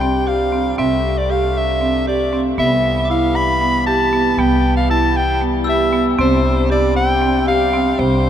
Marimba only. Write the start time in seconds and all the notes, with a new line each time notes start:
0.01 C4
0.27 G4
0.52 C4
0.78 C4
1.30 G4
1.81 C4
2.07 G4
2.33 C4
2.58 B3
3.10 E4
3.61 B3
3.87 G4
4.13 B3
4.39 B3
4.90 E4
5.41 B3
5.67 G4
5.93 B3
6.19 C4
6.70 G4
7.22 C4
7.47 G4
7.73 C4
7.99 C4